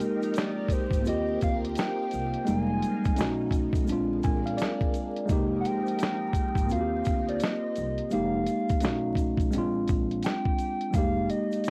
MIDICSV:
0, 0, Header, 1, 6, 480
1, 0, Start_track
1, 0, Tempo, 705882
1, 1680, Time_signature, 4, 2, 24, 8
1, 7956, End_track
2, 0, Start_track
2, 0, Title_t, "Soft synth lead"
2, 0, Program_c, 0, 80
2, 0, Note_on_c, 0, 70, 88
2, 253, Note_on_c, 0, 74, 91
2, 263, Note_off_c, 0, 70, 0
2, 492, Note_on_c, 0, 72, 84
2, 502, Note_off_c, 0, 74, 0
2, 726, Note_off_c, 0, 72, 0
2, 733, Note_on_c, 0, 75, 92
2, 950, Note_off_c, 0, 75, 0
2, 975, Note_on_c, 0, 77, 102
2, 1070, Note_off_c, 0, 77, 0
2, 1212, Note_on_c, 0, 79, 107
2, 1695, Note_on_c, 0, 80, 107
2, 1705, Note_off_c, 0, 79, 0
2, 2408, Note_off_c, 0, 80, 0
2, 3810, Note_on_c, 0, 78, 74
2, 3852, Note_on_c, 0, 79, 118
2, 3863, Note_off_c, 0, 78, 0
2, 4569, Note_on_c, 0, 77, 102
2, 4579, Note_off_c, 0, 79, 0
2, 4954, Note_off_c, 0, 77, 0
2, 4958, Note_on_c, 0, 74, 80
2, 5049, Note_on_c, 0, 75, 95
2, 5059, Note_off_c, 0, 74, 0
2, 5520, Note_off_c, 0, 75, 0
2, 5524, Note_on_c, 0, 77, 99
2, 6455, Note_off_c, 0, 77, 0
2, 6964, Note_on_c, 0, 79, 118
2, 7447, Note_on_c, 0, 77, 111
2, 7457, Note_off_c, 0, 79, 0
2, 7684, Note_on_c, 0, 75, 113
2, 7694, Note_off_c, 0, 77, 0
2, 7956, Note_off_c, 0, 75, 0
2, 7956, End_track
3, 0, Start_track
3, 0, Title_t, "String machine"
3, 0, Program_c, 1, 50
3, 0, Note_on_c, 1, 53, 74
3, 0, Note_on_c, 1, 56, 66
3, 0, Note_on_c, 1, 60, 63
3, 0, Note_on_c, 1, 63, 70
3, 0, Note_on_c, 1, 67, 73
3, 0, Note_on_c, 1, 70, 70
3, 709, Note_off_c, 1, 53, 0
3, 709, Note_off_c, 1, 70, 0
3, 710, Note_off_c, 1, 56, 0
3, 710, Note_off_c, 1, 63, 0
3, 717, Note_on_c, 1, 63, 81
3, 719, Note_on_c, 1, 65, 67
3, 720, Note_on_c, 1, 58, 69
3, 1659, Note_off_c, 1, 67, 0
3, 1669, Note_off_c, 1, 63, 0
3, 1670, Note_off_c, 1, 58, 0
3, 1670, Note_off_c, 1, 65, 0
3, 1685, Note_on_c, 1, 53, 70
3, 1686, Note_on_c, 1, 65, 60
3, 1687, Note_on_c, 1, 80, 62
3, 1688, Note_on_c, 1, 63, 66
3, 1688, Note_on_c, 1, 70, 79
3, 2135, Note_off_c, 1, 60, 0
3, 2156, Note_on_c, 1, 57, 62
3, 2156, Note_on_c, 1, 59, 65
3, 2158, Note_off_c, 1, 53, 0
3, 2158, Note_off_c, 1, 65, 0
3, 2159, Note_off_c, 1, 70, 0
3, 2159, Note_off_c, 1, 80, 0
3, 2633, Note_off_c, 1, 57, 0
3, 2633, Note_off_c, 1, 59, 0
3, 2634, Note_off_c, 1, 63, 0
3, 2639, Note_on_c, 1, 58, 70
3, 2639, Note_on_c, 1, 62, 87
3, 2640, Note_on_c, 1, 56, 76
3, 3587, Note_off_c, 1, 56, 0
3, 3590, Note_off_c, 1, 58, 0
3, 3590, Note_off_c, 1, 62, 0
3, 3595, Note_on_c, 1, 56, 62
3, 3595, Note_on_c, 1, 67, 63
3, 3596, Note_on_c, 1, 53, 68
3, 3596, Note_on_c, 1, 63, 70
3, 3597, Note_on_c, 1, 60, 62
3, 3598, Note_on_c, 1, 70, 83
3, 4548, Note_off_c, 1, 53, 0
3, 4548, Note_off_c, 1, 56, 0
3, 4548, Note_off_c, 1, 63, 0
3, 4548, Note_off_c, 1, 67, 0
3, 4549, Note_off_c, 1, 60, 0
3, 4549, Note_off_c, 1, 70, 0
3, 4556, Note_on_c, 1, 63, 76
3, 4557, Note_on_c, 1, 60, 66
3, 4558, Note_on_c, 1, 65, 68
3, 4559, Note_on_c, 1, 58, 69
3, 4560, Note_on_c, 1, 67, 86
3, 5508, Note_off_c, 1, 63, 0
3, 5509, Note_off_c, 1, 60, 0
3, 5509, Note_off_c, 1, 65, 0
3, 5510, Note_off_c, 1, 58, 0
3, 5510, Note_off_c, 1, 67, 0
3, 7956, End_track
4, 0, Start_track
4, 0, Title_t, "Tine electric piano"
4, 0, Program_c, 2, 4
4, 0, Control_c, 2, 64, 127
4, 0, Note_on_c, 2, 56, 61
4, 0, Note_on_c, 2, 58, 65
4, 0, Note_on_c, 2, 63, 60
4, 0, Note_on_c, 2, 67, 76
4, 686, Note_off_c, 2, 58, 0
4, 688, Note_off_c, 2, 56, 0
4, 694, Note_on_c, 2, 58, 56
4, 704, Note_off_c, 2, 63, 0
4, 709, Note_on_c, 2, 60, 50
4, 712, Note_off_c, 2, 67, 0
4, 724, Note_on_c, 2, 65, 57
4, 730, Control_c, 2, 64, 0
4, 742, Note_on_c, 2, 67, 71
4, 867, Control_c, 2, 64, 127
4, 1648, Note_off_c, 2, 58, 0
4, 1655, Note_off_c, 2, 60, 0
4, 1663, Note_off_c, 2, 65, 0
4, 1666, Note_on_c, 2, 56, 74
4, 1672, Note_off_c, 2, 67, 0
4, 1675, Note_on_c, 2, 58, 66
4, 1683, Note_on_c, 2, 63, 63
4, 1689, Control_c, 2, 64, 0
4, 1692, Note_on_c, 2, 55, 75
4, 1811, Control_c, 2, 64, 127
4, 2144, Note_on_c, 2, 57, 65
4, 2152, Note_on_c, 2, 61, 65
4, 2153, Note_off_c, 2, 56, 0
4, 2153, Note_off_c, 2, 63, 0
4, 2157, Note_off_c, 2, 58, 0
4, 2161, Note_on_c, 2, 63, 66
4, 2166, Note_off_c, 2, 55, 0
4, 2168, Control_c, 2, 64, 0
4, 2169, Note_on_c, 2, 66, 69
4, 2291, Control_c, 2, 64, 127
4, 2617, Note_on_c, 2, 56, 65
4, 2632, Note_off_c, 2, 57, 0
4, 2635, Note_on_c, 2, 60, 57
4, 2636, Note_off_c, 2, 61, 0
4, 2641, Note_off_c, 2, 63, 0
4, 2644, Note_off_c, 2, 66, 0
4, 2649, Control_c, 2, 64, 0
4, 2651, Note_on_c, 2, 62, 67
4, 2669, Note_on_c, 2, 65, 73
4, 2767, Control_c, 2, 64, 127
4, 2883, Note_on_c, 2, 80, 70
4, 3024, Note_off_c, 2, 80, 0
4, 3031, Note_on_c, 2, 77, 67
4, 3109, Note_on_c, 2, 74, 67
4, 3113, Note_off_c, 2, 77, 0
4, 3565, Note_off_c, 2, 56, 0
4, 3567, Note_off_c, 2, 74, 0
4, 3574, Note_on_c, 2, 56, 73
4, 3578, Note_off_c, 2, 60, 0
4, 3586, Note_off_c, 2, 62, 0
4, 3589, Note_on_c, 2, 58, 68
4, 3595, Note_off_c, 2, 65, 0
4, 3604, Note_on_c, 2, 63, 76
4, 3609, Control_c, 2, 64, 0
4, 3621, Note_on_c, 2, 67, 82
4, 3712, Control_c, 2, 64, 127
4, 4525, Note_off_c, 2, 58, 0
4, 4527, Note_off_c, 2, 56, 0
4, 4533, Note_on_c, 2, 58, 58
4, 4543, Note_off_c, 2, 63, 0
4, 4551, Note_off_c, 2, 67, 0
4, 4551, Note_on_c, 2, 60, 61
4, 4566, Note_on_c, 2, 65, 52
4, 4569, Control_c, 2, 64, 0
4, 4585, Note_on_c, 2, 66, 58
4, 4628, Note_on_c, 2, 67, 73
4, 4629, Note_off_c, 2, 66, 0
4, 4700, Control_c, 2, 64, 127
4, 5487, Note_off_c, 2, 58, 0
4, 5496, Note_off_c, 2, 60, 0
4, 5504, Note_off_c, 2, 65, 0
4, 5511, Note_on_c, 2, 56, 62
4, 5519, Note_on_c, 2, 58, 58
4, 5526, Note_off_c, 2, 67, 0
4, 5527, Note_on_c, 2, 63, 65
4, 5530, Control_c, 2, 64, 0
4, 5535, Note_on_c, 2, 67, 70
4, 5636, Control_c, 2, 64, 127
4, 5991, Note_on_c, 2, 57, 70
4, 5996, Note_off_c, 2, 56, 0
4, 5999, Note_off_c, 2, 58, 0
4, 5999, Note_off_c, 2, 63, 0
4, 5999, Note_on_c, 2, 61, 62
4, 6007, Note_off_c, 2, 67, 0
4, 6007, Note_on_c, 2, 63, 62
4, 6009, Control_c, 2, 64, 0
4, 6013, Note_on_c, 2, 66, 75
4, 6116, Control_c, 2, 64, 127
4, 6467, Note_on_c, 2, 56, 75
4, 6476, Note_off_c, 2, 57, 0
4, 6479, Note_off_c, 2, 61, 0
4, 6483, Note_on_c, 2, 60, 65
4, 6484, Note_off_c, 2, 63, 0
4, 6487, Note_off_c, 2, 66, 0
4, 6488, Control_c, 2, 64, 0
4, 6498, Note_on_c, 2, 62, 62
4, 6514, Note_on_c, 2, 65, 89
4, 6619, Control_c, 2, 64, 127
4, 7414, Note_off_c, 2, 56, 0
4, 7417, Note_on_c, 2, 55, 55
4, 7422, Note_off_c, 2, 60, 0
4, 7430, Note_off_c, 2, 62, 0
4, 7431, Note_on_c, 2, 58, 65
4, 7438, Note_off_c, 2, 65, 0
4, 7449, Control_c, 2, 64, 0
4, 7449, Note_on_c, 2, 63, 59
4, 7460, Note_on_c, 2, 56, 69
4, 7465, Note_on_c, 2, 67, 79
4, 7485, Note_off_c, 2, 55, 0
4, 7570, Control_c, 2, 64, 127
4, 7956, Note_off_c, 2, 56, 0
4, 7956, Note_off_c, 2, 58, 0
4, 7956, Note_off_c, 2, 63, 0
4, 7956, Note_off_c, 2, 67, 0
4, 7956, End_track
5, 0, Start_track
5, 0, Title_t, "Upright bass"
5, 0, Program_c, 3, 32
5, 621, Note_on_c, 3, 32, 81
5, 706, Note_off_c, 3, 32, 0
5, 730, Note_on_c, 3, 39, 97
5, 944, Note_off_c, 3, 39, 0
5, 972, Note_on_c, 3, 38, 90
5, 1185, Note_off_c, 3, 38, 0
5, 1454, Note_on_c, 3, 36, 76
5, 1586, Note_off_c, 3, 36, 0
5, 1690, Note_on_c, 3, 29, 99
5, 1904, Note_off_c, 3, 29, 0
5, 2169, Note_on_c, 3, 35, 88
5, 2530, Note_off_c, 3, 35, 0
5, 2540, Note_on_c, 3, 35, 80
5, 2625, Note_off_c, 3, 35, 0
5, 2649, Note_on_c, 3, 34, 94
5, 2864, Note_off_c, 3, 34, 0
5, 2891, Note_on_c, 3, 34, 91
5, 3105, Note_off_c, 3, 34, 0
5, 3602, Note_on_c, 3, 29, 94
5, 3820, Note_off_c, 3, 29, 0
5, 4460, Note_on_c, 3, 32, 84
5, 4545, Note_off_c, 3, 32, 0
5, 4569, Note_on_c, 3, 39, 88
5, 4783, Note_off_c, 3, 39, 0
5, 4811, Note_on_c, 3, 38, 100
5, 5025, Note_off_c, 3, 38, 0
5, 5290, Note_on_c, 3, 36, 84
5, 5425, Note_off_c, 3, 36, 0
5, 5531, Note_on_c, 3, 29, 99
5, 5744, Note_off_c, 3, 29, 0
5, 6009, Note_on_c, 3, 35, 90
5, 6370, Note_off_c, 3, 35, 0
5, 6380, Note_on_c, 3, 35, 83
5, 6465, Note_off_c, 3, 35, 0
5, 6491, Note_on_c, 3, 34, 99
5, 6704, Note_off_c, 3, 34, 0
5, 6731, Note_on_c, 3, 34, 97
5, 6945, Note_off_c, 3, 34, 0
5, 7443, Note_on_c, 3, 29, 107
5, 7660, Note_off_c, 3, 29, 0
5, 7956, End_track
6, 0, Start_track
6, 0, Title_t, "Drums"
6, 1, Note_on_c, 9, 42, 69
6, 3, Note_on_c, 9, 82, 47
6, 69, Note_off_c, 9, 42, 0
6, 71, Note_off_c, 9, 82, 0
6, 152, Note_on_c, 9, 82, 40
6, 158, Note_on_c, 9, 42, 45
6, 220, Note_off_c, 9, 82, 0
6, 226, Note_off_c, 9, 42, 0
6, 230, Note_on_c, 9, 42, 80
6, 241, Note_on_c, 9, 82, 76
6, 259, Note_on_c, 9, 38, 91
6, 298, Note_off_c, 9, 42, 0
6, 309, Note_off_c, 9, 82, 0
6, 327, Note_off_c, 9, 38, 0
6, 466, Note_on_c, 9, 36, 82
6, 474, Note_on_c, 9, 42, 69
6, 483, Note_on_c, 9, 82, 49
6, 534, Note_off_c, 9, 36, 0
6, 542, Note_off_c, 9, 42, 0
6, 551, Note_off_c, 9, 82, 0
6, 616, Note_on_c, 9, 36, 86
6, 631, Note_on_c, 9, 82, 49
6, 634, Note_on_c, 9, 42, 50
6, 684, Note_off_c, 9, 36, 0
6, 699, Note_off_c, 9, 82, 0
6, 702, Note_off_c, 9, 42, 0
6, 716, Note_on_c, 9, 82, 67
6, 729, Note_on_c, 9, 42, 78
6, 784, Note_off_c, 9, 82, 0
6, 797, Note_off_c, 9, 42, 0
6, 960, Note_on_c, 9, 42, 56
6, 962, Note_on_c, 9, 82, 51
6, 968, Note_on_c, 9, 36, 74
6, 1028, Note_off_c, 9, 42, 0
6, 1030, Note_off_c, 9, 82, 0
6, 1036, Note_off_c, 9, 36, 0
6, 1120, Note_on_c, 9, 42, 59
6, 1188, Note_off_c, 9, 42, 0
6, 1193, Note_on_c, 9, 42, 81
6, 1203, Note_on_c, 9, 82, 70
6, 1218, Note_on_c, 9, 38, 102
6, 1261, Note_off_c, 9, 42, 0
6, 1271, Note_off_c, 9, 82, 0
6, 1286, Note_off_c, 9, 38, 0
6, 1436, Note_on_c, 9, 42, 68
6, 1448, Note_on_c, 9, 82, 52
6, 1504, Note_off_c, 9, 42, 0
6, 1516, Note_off_c, 9, 82, 0
6, 1589, Note_on_c, 9, 42, 43
6, 1657, Note_off_c, 9, 42, 0
6, 1678, Note_on_c, 9, 42, 68
6, 1681, Note_on_c, 9, 82, 67
6, 1746, Note_off_c, 9, 42, 0
6, 1749, Note_off_c, 9, 82, 0
6, 1921, Note_on_c, 9, 42, 66
6, 1928, Note_on_c, 9, 82, 45
6, 1989, Note_off_c, 9, 42, 0
6, 1996, Note_off_c, 9, 82, 0
6, 2071, Note_on_c, 9, 82, 45
6, 2076, Note_on_c, 9, 42, 49
6, 2077, Note_on_c, 9, 36, 84
6, 2139, Note_off_c, 9, 82, 0
6, 2144, Note_off_c, 9, 42, 0
6, 2145, Note_off_c, 9, 36, 0
6, 2152, Note_on_c, 9, 42, 76
6, 2161, Note_on_c, 9, 82, 76
6, 2180, Note_on_c, 9, 38, 92
6, 2220, Note_off_c, 9, 42, 0
6, 2229, Note_off_c, 9, 82, 0
6, 2248, Note_off_c, 9, 38, 0
6, 2385, Note_on_c, 9, 36, 79
6, 2395, Note_on_c, 9, 42, 65
6, 2403, Note_on_c, 9, 82, 49
6, 2453, Note_off_c, 9, 36, 0
6, 2463, Note_off_c, 9, 42, 0
6, 2471, Note_off_c, 9, 82, 0
6, 2536, Note_on_c, 9, 36, 89
6, 2552, Note_on_c, 9, 82, 49
6, 2553, Note_on_c, 9, 42, 50
6, 2604, Note_off_c, 9, 36, 0
6, 2620, Note_off_c, 9, 82, 0
6, 2621, Note_off_c, 9, 42, 0
6, 2636, Note_on_c, 9, 82, 67
6, 2648, Note_on_c, 9, 42, 80
6, 2704, Note_off_c, 9, 82, 0
6, 2716, Note_off_c, 9, 42, 0
6, 2878, Note_on_c, 9, 82, 52
6, 2879, Note_on_c, 9, 42, 52
6, 2888, Note_on_c, 9, 36, 83
6, 2946, Note_off_c, 9, 82, 0
6, 2947, Note_off_c, 9, 42, 0
6, 2956, Note_off_c, 9, 36, 0
6, 3038, Note_on_c, 9, 42, 57
6, 3106, Note_off_c, 9, 42, 0
6, 3115, Note_on_c, 9, 42, 89
6, 3121, Note_on_c, 9, 82, 68
6, 3139, Note_on_c, 9, 38, 105
6, 3183, Note_off_c, 9, 42, 0
6, 3189, Note_off_c, 9, 82, 0
6, 3207, Note_off_c, 9, 38, 0
6, 3269, Note_on_c, 9, 36, 89
6, 3273, Note_on_c, 9, 42, 32
6, 3337, Note_off_c, 9, 36, 0
6, 3341, Note_off_c, 9, 42, 0
6, 3358, Note_on_c, 9, 42, 67
6, 3362, Note_on_c, 9, 82, 50
6, 3426, Note_off_c, 9, 42, 0
6, 3430, Note_off_c, 9, 82, 0
6, 3512, Note_on_c, 9, 42, 49
6, 3580, Note_off_c, 9, 42, 0
6, 3596, Note_on_c, 9, 82, 68
6, 3599, Note_on_c, 9, 36, 109
6, 3600, Note_on_c, 9, 42, 64
6, 3664, Note_off_c, 9, 82, 0
6, 3667, Note_off_c, 9, 36, 0
6, 3668, Note_off_c, 9, 42, 0
6, 3841, Note_on_c, 9, 82, 39
6, 3843, Note_on_c, 9, 42, 69
6, 3909, Note_off_c, 9, 82, 0
6, 3911, Note_off_c, 9, 42, 0
6, 3987, Note_on_c, 9, 82, 39
6, 4000, Note_on_c, 9, 42, 45
6, 4055, Note_off_c, 9, 82, 0
6, 4068, Note_off_c, 9, 42, 0
6, 4072, Note_on_c, 9, 42, 84
6, 4076, Note_on_c, 9, 82, 78
6, 4100, Note_on_c, 9, 38, 97
6, 4140, Note_off_c, 9, 42, 0
6, 4144, Note_off_c, 9, 82, 0
6, 4168, Note_off_c, 9, 38, 0
6, 4305, Note_on_c, 9, 36, 84
6, 4315, Note_on_c, 9, 42, 62
6, 4317, Note_on_c, 9, 82, 53
6, 4373, Note_off_c, 9, 36, 0
6, 4383, Note_off_c, 9, 42, 0
6, 4385, Note_off_c, 9, 82, 0
6, 4455, Note_on_c, 9, 36, 84
6, 4467, Note_on_c, 9, 82, 52
6, 4473, Note_on_c, 9, 42, 49
6, 4523, Note_off_c, 9, 36, 0
6, 4535, Note_off_c, 9, 82, 0
6, 4541, Note_off_c, 9, 42, 0
6, 4551, Note_on_c, 9, 82, 61
6, 4565, Note_on_c, 9, 42, 82
6, 4619, Note_off_c, 9, 82, 0
6, 4633, Note_off_c, 9, 42, 0
6, 4794, Note_on_c, 9, 82, 55
6, 4796, Note_on_c, 9, 42, 59
6, 4807, Note_on_c, 9, 36, 76
6, 4862, Note_off_c, 9, 82, 0
6, 4864, Note_off_c, 9, 42, 0
6, 4875, Note_off_c, 9, 36, 0
6, 4955, Note_on_c, 9, 42, 54
6, 5023, Note_off_c, 9, 42, 0
6, 5032, Note_on_c, 9, 42, 80
6, 5035, Note_on_c, 9, 82, 67
6, 5057, Note_on_c, 9, 38, 113
6, 5100, Note_off_c, 9, 42, 0
6, 5103, Note_off_c, 9, 82, 0
6, 5125, Note_off_c, 9, 38, 0
6, 5274, Note_on_c, 9, 42, 64
6, 5278, Note_on_c, 9, 82, 45
6, 5342, Note_off_c, 9, 42, 0
6, 5346, Note_off_c, 9, 82, 0
6, 5426, Note_on_c, 9, 42, 48
6, 5494, Note_off_c, 9, 42, 0
6, 5513, Note_on_c, 9, 82, 71
6, 5517, Note_on_c, 9, 42, 66
6, 5581, Note_off_c, 9, 82, 0
6, 5585, Note_off_c, 9, 42, 0
6, 5756, Note_on_c, 9, 42, 67
6, 5761, Note_on_c, 9, 82, 47
6, 5824, Note_off_c, 9, 42, 0
6, 5829, Note_off_c, 9, 82, 0
6, 5910, Note_on_c, 9, 82, 44
6, 5913, Note_on_c, 9, 42, 50
6, 5916, Note_on_c, 9, 36, 87
6, 5978, Note_off_c, 9, 82, 0
6, 5981, Note_off_c, 9, 42, 0
6, 5984, Note_off_c, 9, 36, 0
6, 5988, Note_on_c, 9, 42, 78
6, 5996, Note_on_c, 9, 82, 74
6, 6016, Note_on_c, 9, 38, 95
6, 6056, Note_off_c, 9, 42, 0
6, 6064, Note_off_c, 9, 82, 0
6, 6084, Note_off_c, 9, 38, 0
6, 6226, Note_on_c, 9, 36, 87
6, 6235, Note_on_c, 9, 42, 64
6, 6242, Note_on_c, 9, 82, 52
6, 6294, Note_off_c, 9, 36, 0
6, 6303, Note_off_c, 9, 42, 0
6, 6310, Note_off_c, 9, 82, 0
6, 6375, Note_on_c, 9, 36, 90
6, 6391, Note_on_c, 9, 42, 50
6, 6393, Note_on_c, 9, 82, 45
6, 6443, Note_off_c, 9, 36, 0
6, 6459, Note_off_c, 9, 42, 0
6, 6461, Note_off_c, 9, 82, 0
6, 6475, Note_on_c, 9, 82, 64
6, 6483, Note_on_c, 9, 42, 88
6, 6543, Note_off_c, 9, 82, 0
6, 6551, Note_off_c, 9, 42, 0
6, 6716, Note_on_c, 9, 42, 58
6, 6719, Note_on_c, 9, 82, 52
6, 6727, Note_on_c, 9, 36, 81
6, 6784, Note_off_c, 9, 42, 0
6, 6787, Note_off_c, 9, 82, 0
6, 6795, Note_off_c, 9, 36, 0
6, 6876, Note_on_c, 9, 42, 50
6, 6944, Note_off_c, 9, 42, 0
6, 6953, Note_on_c, 9, 42, 86
6, 6960, Note_on_c, 9, 82, 68
6, 6978, Note_on_c, 9, 38, 116
6, 7021, Note_off_c, 9, 42, 0
6, 7028, Note_off_c, 9, 82, 0
6, 7046, Note_off_c, 9, 38, 0
6, 7108, Note_on_c, 9, 36, 91
6, 7176, Note_off_c, 9, 36, 0
6, 7197, Note_on_c, 9, 42, 63
6, 7203, Note_on_c, 9, 82, 50
6, 7265, Note_off_c, 9, 42, 0
6, 7271, Note_off_c, 9, 82, 0
6, 7350, Note_on_c, 9, 42, 49
6, 7418, Note_off_c, 9, 42, 0
6, 7437, Note_on_c, 9, 82, 69
6, 7438, Note_on_c, 9, 36, 104
6, 7439, Note_on_c, 9, 42, 72
6, 7505, Note_off_c, 9, 82, 0
6, 7506, Note_off_c, 9, 36, 0
6, 7507, Note_off_c, 9, 42, 0
6, 7682, Note_on_c, 9, 42, 64
6, 7684, Note_on_c, 9, 82, 42
6, 7750, Note_off_c, 9, 42, 0
6, 7752, Note_off_c, 9, 82, 0
6, 7832, Note_on_c, 9, 82, 45
6, 7840, Note_on_c, 9, 42, 47
6, 7900, Note_off_c, 9, 82, 0
6, 7908, Note_off_c, 9, 42, 0
6, 7914, Note_on_c, 9, 42, 80
6, 7922, Note_on_c, 9, 82, 71
6, 7956, Note_off_c, 9, 42, 0
6, 7956, Note_off_c, 9, 82, 0
6, 7956, End_track
0, 0, End_of_file